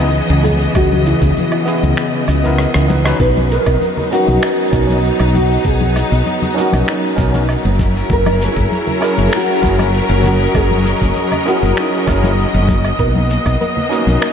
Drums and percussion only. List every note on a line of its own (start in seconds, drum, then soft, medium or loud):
0.00 shaker soft
0.15 shaker soft
0.31 muted conga medium
0.45 high conga medium
0.45 low conga medium
0.45 shaker medium
0.61 shaker soft
0.75 kick loud
0.75 muted conga medium
0.75 low woodblock medium
0.75 shaker soft
0.92 high conga medium
1.06 low conga medium
1.06 shaker medium
1.22 kick medium
1.22 low conga medium
1.22 shaker soft
1.37 muted conga soft
1.37 high conga medium
1.37 shaker soft
1.52 low woodblock medium
1.67 shaker medium
1.83 muted conga medium
1.83 high conga loud
1.83 shaker soft
1.97 finger snap medium
1.97 shaker soft
2.28 low woodblock medium
2.28 shaker medium
2.45 muted conga medium
2.45 high conga medium
2.45 shaker soft
2.58 cross-stick medium
2.58 shaker soft
2.74 cross-stick medium
2.90 muted conga medium
2.90 high conga medium
2.90 low conga medium
2.90 shaker medium
3.06 cross-stick medium
3.06 low woodblock medium
3.06 shaker soft
3.20 kick loud
3.20 shaker soft
3.37 high conga medium
3.51 shaker medium
3.66 kick medium
3.66 low woodblock medium
3.66 shaker soft
3.81 high conga medium
3.81 shaker soft
3.97 low conga medium
4.12 shaker medium
4.28 high conga medium
4.28 shaker soft
4.43 finger snap medium
4.43 low woodblock medium
4.43 shaker soft
4.73 kick loud
4.73 muted conga medium
4.73 shaker medium
4.89 high conga medium
4.89 shaker soft
5.04 shaker soft
5.20 muted conga medium
5.20 low woodblock medium
5.34 high conga medium
5.34 low conga medium
5.34 shaker medium
5.51 shaker soft
5.65 kick loud
5.65 shaker soft
5.81 high conga medium
5.96 muted conga medium
5.96 low woodblock medium
5.96 shaker medium
6.12 shaker soft
6.26 high conga medium
6.26 shaker soft
6.42 muted conga medium
6.42 low conga medium
6.58 shaker medium
6.73 high conga medium
6.73 low woodblock medium
6.73 shaker soft
6.88 finger snap medium
6.88 shaker soft
7.18 kick loud
7.18 muted conga medium
7.18 shaker medium
7.34 muted conga medium
7.34 high conga medium
7.34 shaker soft
7.49 low woodblock medium
7.49 shaker soft
7.79 kick loud
7.79 high conga medium
7.79 shaker medium
7.96 shaker soft
8.10 kick loud
8.10 shaker soft
8.26 high conga loud
8.26 low woodblock medium
8.42 shaker medium
8.57 kick medium
8.57 shaker soft
8.72 high conga medium
8.72 shaker soft
8.87 low conga medium
9.02 low woodblock medium
9.02 shaker medium
9.18 high conga loud
9.18 shaker soft
9.33 finger snap medium
9.33 shaker soft
9.63 kick loud
9.63 muted conga medium
9.63 shaker medium
9.79 high conga medium
9.79 low woodblock medium
9.79 shaker soft
9.94 shaker soft
10.09 muted conga medium
10.23 high conga loud
10.23 low conga medium
10.23 shaker medium
10.41 shaker soft
10.55 kick loud
10.55 low woodblock medium
10.55 shaker soft
10.71 high conga loud
10.85 muted conga medium
10.85 shaker medium
11.01 kick medium
11.01 shaker soft
11.17 high conga medium
11.17 shaker soft
11.32 muted conga medium
11.32 low conga medium
11.32 low woodblock medium
11.48 shaker medium
11.63 high conga medium
11.63 shaker soft
11.77 finger snap medium
11.77 shaker soft
12.08 kick loud
12.08 muted conga medium
12.08 low woodblock medium
12.08 shaker medium
12.24 muted conga medium
12.24 high conga medium
12.24 shaker soft
12.39 shaker soft
12.69 kick loud
12.69 high conga loud
12.69 shaker medium
12.85 low woodblock medium
12.85 shaker soft
12.99 kick loud
12.99 shaker soft
13.15 high conga medium
13.30 shaker medium
13.46 kick medium
13.46 low woodblock medium
13.46 shaker soft
13.61 high conga medium
13.61 shaker soft
13.77 low conga medium
13.92 shaker medium
14.07 high conga medium
14.07 shaker soft
14.22 finger snap medium
14.22 low woodblock medium
14.22 shaker soft